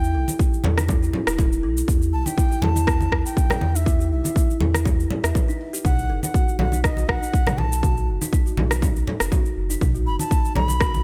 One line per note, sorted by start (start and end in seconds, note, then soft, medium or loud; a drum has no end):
0.00 0.16 E2 medium
0.00 0.36 G5 loud
0.00 shaker soft
0.15 0.25 B1 medium
0.15 0.27 A4 medium
0.28 high conga medium
0.28 shaker medium
0.39 0.47 G4 medium
0.39 kick loud
0.39 shaker medium
0.54 shaker soft
0.64 1.09 E2 medium
0.64 high conga loud
0.64 low conga loud
0.78 0.84 D#4 medium
0.78 cross-stick medium
0.78 high conga medium
0.78 shaker medium
0.89 1.02 E4 medium
0.89 kick loud
0.89 low conga loud
0.89 shaker medium
1.02 1.13 G4 medium
1.02 shaker soft
1.13 low conga loud
1.27 1.65 E1 medium
1.27 1.37 E4 medium
1.27 cross-stick loud
1.27 shaker medium
1.39 1.51 E4 medium
1.39 kick loud
1.39 low conga medium
1.39 shaker medium
1.53 shaker soft
1.63 1.83 B1 loud
1.63 1.76 A4 medium
1.77 shaker medium
1.88 2.14 E2 loud
1.88 1.95 G4 medium
1.88 kick loud
1.88 shaker medium
2.02 shaker soft
2.13 2.23 B1 medium
2.13 2.28 A5 loud
2.26 2.33 D#4 medium
2.26 2.64 G5 loud
2.26 high conga medium
2.26 shaker medium
2.38 2.50 E4 loud
2.38 kick loud
2.38 shaker medium
2.51 2.62 G4 medium
2.51 shaker soft
2.62 3.08 E2 medium
2.62 3.25 A5 loud
2.62 high conga loud
2.62 low conga loud
2.75 2.86 E4 medium
2.75 high conga medium
2.75 shaker medium
2.87 kick loud
2.87 cross-stick medium
2.87 shaker medium
3.01 high conga medium
3.01 shaker soft
3.12 3.22 E2 medium
3.12 3.25 A4 medium
3.12 kick medium
3.12 cross-stick medium
3.25 3.77 G5 loud
3.25 shaker medium
3.37 3.44 G4 medium
3.37 kick loud
3.37 shaker medium
3.50 cross-stick medium
3.50 low conga loud
3.50 shaker soft
3.61 4.13 E2 medium
3.61 high conga medium
3.75 3.81 D#4 medium
3.75 4.11 E5 medium
3.75 shaker medium
3.86 3.99 E4 loud
3.86 kick loud
3.86 shaker medium
3.99 4.11 G4 medium
3.99 shaker soft
4.11 4.21 B1 medium
4.11 4.58 E5 medium
4.24 4.35 E4 medium
4.24 high conga medium
4.24 shaker medium
4.36 4.48 E4 medium
4.36 kick loud
4.36 shaker medium
4.50 shaker soft
4.60 5.06 E2 medium
4.60 4.73 A4 medium
4.60 high conga loud
4.60 low conga medium
4.74 cross-stick medium
4.74 high conga medium
4.74 shaker medium
4.85 4.93 G4 medium
4.85 kick loud
4.85 low conga loud
4.85 shaker medium
5.00 shaker soft
5.11 5.22 G4 medium
5.11 low conga loud
5.24 5.33 E2 medium
5.24 5.34 E5 loud
5.24 cross-stick medium
5.24 shaker medium
5.35 5.47 B4 medium
5.35 kick loud
5.35 low conga medium
5.35 shaker medium
5.48 5.55 D#4 loud
5.48 shaker soft
5.73 5.84 G4 medium
5.73 shaker medium
5.85 6.11 B1 loud
5.85 5.97 D#4 medium
5.85 6.20 F#5 loud
5.85 kick loud
5.85 mid tom loud
5.85 shaker medium
5.99 shaker soft
6.09 6.20 F#1 medium
6.09 6.22 A4 medium
6.23 6.57 F#5 medium
6.23 high conga medium
6.23 shaker medium
6.34 6.42 F#4 medium
6.34 kick loud
6.34 shaker medium
6.49 shaker soft
6.59 7.04 B1 medium
6.59 6.82 F#5 medium
6.59 high conga loud
6.59 low conga loud
6.72 6.79 D#4 medium
6.72 high conga medium
6.72 shaker medium
6.84 6.97 D#4 loud
6.84 7.10 D#5 medium
6.84 kick loud
6.84 cross-stick medium
6.84 shaker medium
6.97 7.08 F#4 medium
6.97 high conga medium
6.97 shaker soft
7.09 7.19 B1 medium
7.09 7.60 F#5 loud
7.09 kick medium
7.09 cross-stick medium
7.22 7.32 D#4 medium
7.22 shaker medium
7.34 7.46 D#4 medium
7.34 kick loud
7.34 shaker medium
7.47 cross-stick medium
7.47 mid tom medium
7.47 low conga loud
7.47 shaker soft
7.58 8.10 B1 medium
7.58 7.71 A4 medium
7.58 8.08 A5 loud
7.58 high conga medium
7.72 shaker medium
7.83 7.91 F#4 medium
7.83 kick loud
7.83 mid tom medium
7.83 shaker medium
7.97 shaker soft
8.08 8.18 F#1 medium
8.21 8.28 D#4 medium
8.21 high conga medium
8.21 shaker medium
8.33 8.45 D#4 loud
8.33 kick loud
8.33 shaker medium
8.46 8.57 F#4 medium
8.46 shaker soft
8.57 9.03 B1 medium
8.57 high conga loud
8.57 low conga loud
8.71 8.81 D#4 medium
8.71 cross-stick medium
8.71 high conga medium
8.71 shaker medium
8.82 8.94 D#4 medium
8.82 kick loud
8.82 low conga loud
8.82 shaker medium
8.96 shaker soft
9.07 9.20 A4 medium
9.07 low conga loud
9.20 9.29 F#1 medium
9.20 cross-stick medium
9.20 shaker medium
9.32 9.39 F#4 medium
9.32 kick loud
9.32 low conga medium
9.32 shaker medium
9.46 shaker soft
9.57 9.76 F#1 loud
9.70 9.76 D#4 medium
9.70 shaker medium
9.81 10.08 B1 loud
9.81 9.94 D#4 loud
9.81 kick loud
9.81 mid tom medium
9.81 shaker medium
9.95 10.06 F#4 medium
9.95 shaker soft
10.06 10.16 F#1 medium
10.06 10.19 B5 loud
10.19 10.30 D#4 medium
10.19 10.53 A5 loud
10.19 high conga medium
10.19 shaker medium
10.31 10.43 D#4 medium
10.31 kick loud
10.31 shaker medium
10.45 shaker soft
10.55 11.01 B1 medium
10.55 10.68 A4 medium
10.55 11.04 B5 loud
10.55 high conga loud
10.55 low conga loud
10.68 high conga medium
10.68 shaker medium
10.80 10.88 F#4 medium
10.80 kick loud
10.80 cross-stick medium
10.80 shaker medium
10.94 high conga medium
10.94 shaker soft